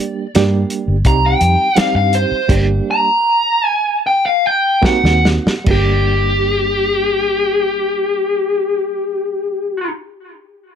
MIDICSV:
0, 0, Header, 1, 6, 480
1, 0, Start_track
1, 0, Key_signature, -2, "minor"
1, 0, Tempo, 710900
1, 1682, Tempo, 762389
1, 1683, Time_signature, 4, 2, 24, 8
1, 2642, Tempo, 824176
1, 3602, Tempo, 862069
1, 6434, End_track
2, 0, Start_track
2, 0, Title_t, "Lead electric guitar"
2, 0, Program_c, 0, 29
2, 723, Note_on_c, 0, 82, 86
2, 832, Note_off_c, 0, 82, 0
2, 853, Note_on_c, 0, 79, 90
2, 1211, Note_off_c, 0, 79, 0
2, 1211, Note_on_c, 0, 77, 90
2, 1310, Note_off_c, 0, 77, 0
2, 1325, Note_on_c, 0, 77, 79
2, 1438, Note_off_c, 0, 77, 0
2, 1451, Note_on_c, 0, 72, 84
2, 1683, Note_off_c, 0, 72, 0
2, 1944, Note_on_c, 0, 82, 94
2, 2410, Note_off_c, 0, 82, 0
2, 2410, Note_on_c, 0, 80, 94
2, 2635, Note_off_c, 0, 80, 0
2, 2671, Note_on_c, 0, 79, 86
2, 2769, Note_off_c, 0, 79, 0
2, 2783, Note_on_c, 0, 77, 97
2, 2901, Note_off_c, 0, 77, 0
2, 2901, Note_on_c, 0, 79, 90
2, 3118, Note_off_c, 0, 79, 0
2, 3131, Note_on_c, 0, 78, 98
2, 3357, Note_off_c, 0, 78, 0
2, 3627, Note_on_c, 0, 67, 97
2, 5958, Note_off_c, 0, 67, 0
2, 6434, End_track
3, 0, Start_track
3, 0, Title_t, "Reed electric piano"
3, 0, Program_c, 1, 4
3, 0, Note_on_c, 1, 55, 82
3, 0, Note_on_c, 1, 58, 69
3, 0, Note_on_c, 1, 62, 76
3, 0, Note_on_c, 1, 67, 88
3, 171, Note_off_c, 1, 55, 0
3, 173, Note_off_c, 1, 58, 0
3, 173, Note_off_c, 1, 62, 0
3, 175, Note_off_c, 1, 67, 0
3, 237, Note_on_c, 1, 55, 93
3, 239, Note_on_c, 1, 58, 84
3, 242, Note_on_c, 1, 62, 74
3, 244, Note_on_c, 1, 67, 100
3, 642, Note_off_c, 1, 55, 0
3, 643, Note_off_c, 1, 58, 0
3, 645, Note_off_c, 1, 62, 0
3, 646, Note_off_c, 1, 67, 0
3, 709, Note_on_c, 1, 55, 75
3, 712, Note_on_c, 1, 60, 63
3, 718, Note_on_c, 1, 63, 69
3, 718, Note_on_c, 1, 67, 85
3, 1122, Note_off_c, 1, 55, 0
3, 1123, Note_off_c, 1, 60, 0
3, 1126, Note_off_c, 1, 63, 0
3, 1126, Note_off_c, 1, 67, 0
3, 1185, Note_on_c, 1, 55, 73
3, 1190, Note_on_c, 1, 60, 74
3, 1192, Note_on_c, 1, 63, 76
3, 1199, Note_on_c, 1, 67, 85
3, 1609, Note_off_c, 1, 55, 0
3, 1612, Note_off_c, 1, 60, 0
3, 1613, Note_off_c, 1, 63, 0
3, 1616, Note_off_c, 1, 67, 0
3, 1678, Note_on_c, 1, 55, 78
3, 1683, Note_on_c, 1, 58, 70
3, 1687, Note_on_c, 1, 62, 76
3, 1689, Note_on_c, 1, 67, 84
3, 2057, Note_off_c, 1, 55, 0
3, 2059, Note_off_c, 1, 58, 0
3, 2061, Note_off_c, 1, 62, 0
3, 2062, Note_off_c, 1, 67, 0
3, 3107, Note_on_c, 1, 58, 94
3, 3111, Note_on_c, 1, 60, 84
3, 3116, Note_on_c, 1, 63, 86
3, 3116, Note_on_c, 1, 66, 99
3, 3529, Note_off_c, 1, 58, 0
3, 3531, Note_off_c, 1, 60, 0
3, 3534, Note_off_c, 1, 63, 0
3, 3534, Note_off_c, 1, 66, 0
3, 3590, Note_on_c, 1, 55, 80
3, 3603, Note_on_c, 1, 58, 75
3, 3614, Note_on_c, 1, 62, 67
3, 3626, Note_on_c, 1, 67, 86
3, 5922, Note_off_c, 1, 55, 0
3, 5934, Note_off_c, 1, 58, 0
3, 5945, Note_off_c, 1, 62, 0
3, 5957, Note_off_c, 1, 67, 0
3, 6434, End_track
4, 0, Start_track
4, 0, Title_t, "Fingered electric bass"
4, 0, Program_c, 2, 33
4, 243, Note_on_c, 2, 43, 91
4, 431, Note_off_c, 2, 43, 0
4, 593, Note_on_c, 2, 31, 73
4, 688, Note_off_c, 2, 31, 0
4, 710, Note_on_c, 2, 36, 102
4, 903, Note_off_c, 2, 36, 0
4, 953, Note_on_c, 2, 41, 111
4, 1049, Note_off_c, 2, 41, 0
4, 1316, Note_on_c, 2, 43, 81
4, 1513, Note_off_c, 2, 43, 0
4, 1683, Note_on_c, 2, 31, 102
4, 1872, Note_off_c, 2, 31, 0
4, 3237, Note_on_c, 2, 39, 78
4, 3433, Note_off_c, 2, 39, 0
4, 3605, Note_on_c, 2, 31, 100
4, 5936, Note_off_c, 2, 31, 0
4, 6434, End_track
5, 0, Start_track
5, 0, Title_t, "Muted fingered electric bass strokes"
5, 1196, Note_on_c, 9, 29, 39
5, 1264, Note_off_c, 9, 29, 0
5, 1563, Note_on_c, 9, 29, 35
5, 1630, Note_off_c, 9, 29, 0
5, 3116, Note_on_c, 9, 29, 36
5, 3175, Note_off_c, 9, 29, 0
5, 3485, Note_on_c, 9, 29, 37
5, 3543, Note_off_c, 9, 29, 0
5, 6434, End_track
6, 0, Start_track
6, 0, Title_t, "Drums"
6, 0, Note_on_c, 9, 42, 53
6, 67, Note_off_c, 9, 42, 0
6, 235, Note_on_c, 9, 42, 81
6, 244, Note_on_c, 9, 38, 116
6, 303, Note_off_c, 9, 42, 0
6, 311, Note_off_c, 9, 38, 0
6, 473, Note_on_c, 9, 42, 60
6, 541, Note_off_c, 9, 42, 0
6, 707, Note_on_c, 9, 42, 83
6, 708, Note_on_c, 9, 36, 90
6, 775, Note_off_c, 9, 42, 0
6, 776, Note_off_c, 9, 36, 0
6, 949, Note_on_c, 9, 42, 55
6, 1017, Note_off_c, 9, 42, 0
6, 1191, Note_on_c, 9, 42, 78
6, 1200, Note_on_c, 9, 38, 120
6, 1259, Note_off_c, 9, 42, 0
6, 1268, Note_off_c, 9, 38, 0
6, 1437, Note_on_c, 9, 42, 60
6, 1504, Note_off_c, 9, 42, 0
6, 1682, Note_on_c, 9, 36, 115
6, 1684, Note_on_c, 9, 42, 78
6, 1684, Note_on_c, 9, 49, 81
6, 1745, Note_off_c, 9, 36, 0
6, 1747, Note_off_c, 9, 42, 0
6, 1747, Note_off_c, 9, 49, 0
6, 3114, Note_on_c, 9, 36, 93
6, 3124, Note_on_c, 9, 38, 94
6, 3172, Note_off_c, 9, 36, 0
6, 3182, Note_off_c, 9, 38, 0
6, 3245, Note_on_c, 9, 38, 64
6, 3303, Note_off_c, 9, 38, 0
6, 3363, Note_on_c, 9, 38, 87
6, 3421, Note_off_c, 9, 38, 0
6, 3488, Note_on_c, 9, 38, 84
6, 3546, Note_off_c, 9, 38, 0
6, 3601, Note_on_c, 9, 49, 81
6, 3604, Note_on_c, 9, 36, 103
6, 3657, Note_off_c, 9, 49, 0
6, 3659, Note_off_c, 9, 36, 0
6, 6434, End_track
0, 0, End_of_file